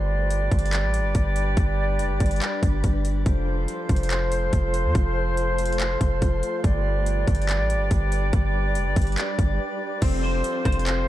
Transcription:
0.00 0.49 G1 loud
0.00 3.09 G3 medium
0.00 3.23 G3 medium
0.00 3.23 D4 medium
0.00 3.09 G4 medium
0.00 3.09 B4 medium
0.00 3.23 B4 medium
0.00 3.09 D5 medium
0.30 closed hi-hat medium
0.51 0.85 G1 loud
0.51 kick medium
0.51 closed hi-hat medium
0.59 closed hi-hat medium
0.66 closed hi-hat medium
0.73 clap loud
0.73 closed hi-hat medium
0.83 1.01 A1 loud
0.94 closed hi-hat medium
0.99 1.14 G1 loud
1.15 1.55 G1 loud
1.15 kick medium
1.15 closed hi-hat medium
1.36 closed hi-hat medium
1.57 2.01 G1 loud
1.57 kick loud
1.57 closed hi-hat medium
1.99 2.11 F1 loud
1.99 closed hi-hat medium
2.10 2.20 G1 loud
2.20 2.41 G1 loud
2.20 kick medium
2.20 closed hi-hat medium
2.20 open hi-hat medium
2.26 closed hi-hat medium
2.31 closed hi-hat medium
2.36 closed hi-hat soft
2.42 clap loud
2.42 closed hi-hat medium
2.63 2.83 G1 loud
2.63 kick medium
2.63 closed hi-hat medium
2.84 3.24 G1 loud
2.84 kick medium
2.84 closed hi-hat medium
3.05 closed hi-hat medium
3.26 3.67 F1 loud
3.26 6.61 F3 medium
3.26 6.61 A3 medium
3.26 6.61 F4 medium
3.26 6.61 A4 medium
3.26 6.60 C5 medium
3.26 6.61 C5 medium
3.26 kick loud
3.26 closed hi-hat medium
3.68 closed hi-hat medium
3.89 4.50 F1 loud
3.89 kick medium
3.89 closed hi-hat medium
3.96 closed hi-hat medium
4.03 closed hi-hat medium
4.10 clap loud
4.10 closed hi-hat medium
4.32 closed hi-hat medium
4.53 4.86 F1 loud
4.53 kick medium
4.53 closed hi-hat medium
4.74 closed hi-hat medium
4.85 4.95 F2 loud
4.95 5.97 F1 loud
4.95 kick loud
4.95 closed hi-hat medium
5.37 closed hi-hat medium
5.58 closed hi-hat medium
5.66 closed hi-hat medium
5.72 closed hi-hat medium
5.80 clap loud
5.80 closed hi-hat medium
6.01 6.21 F1 loud
6.01 kick medium
6.01 closed hi-hat medium
6.22 6.42 F1 loud
6.22 kick medium
6.22 closed hi-hat medium
6.43 closed hi-hat medium
6.64 7.25 G1 loud
6.64 9.99 G3 medium
6.64 9.99 D4 medium
6.64 9.99 G4 medium
6.64 9.99 B4 medium
6.64 9.99 D5 medium
6.64 kick loud
6.64 closed hi-hat medium
7.06 closed hi-hat medium
7.27 7.61 G1 loud
7.27 kick medium
7.27 closed hi-hat medium
7.35 closed hi-hat medium
7.42 closed hi-hat medium
7.49 clap loud
7.49 closed hi-hat medium
7.59 7.76 A1 loud
7.70 closed hi-hat medium
7.75 7.90 G1 medium
7.91 8.31 G1 loud
7.91 kick medium
7.91 closed hi-hat medium
8.12 closed hi-hat medium
8.33 8.77 G1 loud
8.33 kick loud
8.33 closed hi-hat medium
8.75 8.87 F1 loud
8.75 closed hi-hat medium
8.86 8.96 G1 loud
8.96 9.17 G1 loud
8.96 kick medium
8.96 closed hi-hat medium
8.96 open hi-hat medium
9.02 closed hi-hat medium
9.07 closed hi-hat medium
9.12 closed hi-hat soft
9.17 clap loud
9.17 closed hi-hat medium
9.39 9.59 G1 loud
9.39 kick medium
9.39 closed hi-hat medium
10.02 10.43 F1 loud
10.02 11.08 F3 medium
10.02 10.85 C4 loud
10.02 11.08 C4 medium
10.02 11.08 F4 medium
10.02 11.08 A4 medium
10.02 11.08 C5 medium
10.02 11.08 F5 medium
10.02 kick loud
10.02 closed hi-hat medium
10.02 crash loud
10.23 10.64 C5 medium
10.44 closed hi-hat medium
10.65 11.08 F1 loud
10.65 11.08 C5 medium
10.65 kick loud
10.65 cross-stick loud
10.65 closed hi-hat medium
10.72 closed hi-hat medium
10.79 closed hi-hat medium
10.86 11.08 C4 medium
10.86 clap loud
10.86 closed hi-hat medium

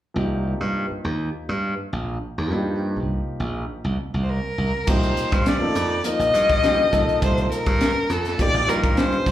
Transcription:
0.14 0.53 C2 medium
0.14 2.47 F3 medium
0.14 2.48 A#3 soft
0.14 2.48 D#4 soft
0.14 2.49 G4 medium
0.61 0.85 G2 medium
0.91 muted slap bass stroke soft
1.04 1.29 D#2 medium
1.49 1.74 G2 medium
1.93 2.17 A#1 medium
2.38 2.51 D#2 medium
2.51 2.98 G2 medium
2.51 4.53 F3 medium
2.51 4.54 A#3 medium
2.51 4.55 D#4 soft
2.55 4.55 G4 medium
2.96 3.21 C2 medium
3.40 3.64 A#1 medium
3.84 3.96 C2 medium
4.14 4.39 C2 medium
4.23 4.31 C5 soft
4.29 4.90 A#4 medium
4.58 4.71 C2 medium
4.87 5.12 C2 medium
4.87 5.39 F3 medium
4.87 5.39 A#3 medium
4.87 5.39 D#4 medium
4.87 5.40 G4 medium
4.87 5.49 C5 medium
4.87 kick medium
4.87 crash medium
5.03 closed hi-hat soft
5.17 closed hi-hat medium
5.32 5.56 G2 medium
5.32 kick medium
5.32 closed hi-hat soft
5.46 6.07 D5 medium
5.46 snare loud
5.46 closed hi-hat medium
5.60 5.92 F3 medium
5.60 5.92 A#3 medium
5.60 5.92 D#4 medium
5.60 5.93 A4 medium
5.75 6.00 F2 medium
5.75 closed hi-hat medium
6.04 6.46 F3 medium
6.04 6.46 A#3 medium
6.04 6.46 D#4 medium
6.04 6.47 A#4 medium
6.04 7.22 D#5 loud
6.04 closed hi-hat medium
6.19 6.31 A#1 medium
6.19 closed hi-hat soft
6.33 6.82 G2 medium
6.33 closed hi-hat medium
6.50 kick medium
6.50 closed hi-hat soft
6.62 6.84 F3 medium
6.62 6.84 A#3 medium
6.62 6.84 D#4 medium
6.62 6.85 G4 medium
6.62 snare medium
6.62 closed hi-hat medium
6.91 7.05 C2 medium
6.91 7.74 F3 medium
6.91 7.74 A#3 medium
6.91 7.74 D#4 medium
6.91 7.75 A4 loud
6.91 kick medium
6.91 snare soft
6.91 closed hi-hat medium
7.09 closed hi-hat soft
7.22 7.46 C2 loud
7.22 7.50 C5 medium
7.22 kick loud
7.22 closed hi-hat medium
7.37 closed hi-hat soft
7.51 8.13 A#4 loud
7.51 muted slap bass stroke soft
7.51 closed hi-hat medium
7.66 7.91 G2 medium
7.66 kick medium
7.66 closed hi-hat soft
7.81 snare loud
7.81 closed hi-hat medium
8.10 8.34 F2 medium
8.10 8.43 A4 medium
8.10 closed hi-hat medium
8.25 snare soft
8.25 closed hi-hat soft
8.38 8.59 F3 medium
8.38 8.59 A#3 medium
8.38 8.60 D#4 medium
8.38 8.60 G4 medium
8.38 8.70 D5 loud
8.38 kick medium
8.38 closed hi-hat medium
8.54 8.66 A#1 medium
8.67 9.16 G2 medium
8.67 9.29 F3 medium
8.67 9.29 A#3 medium
8.67 9.29 D#4 medium
8.67 9.30 G4 medium
8.67 8.99 A#4 medium
8.67 closed hi-hat medium
8.84 kick medium
8.84 closed hi-hat soft
8.97 9.31 C5 medium
8.97 snare loud
8.97 closed hi-hat medium
9.12 closed hi-hat soft
9.26 9.31 C2 medium
9.26 kick medium
9.26 open hi-hat medium

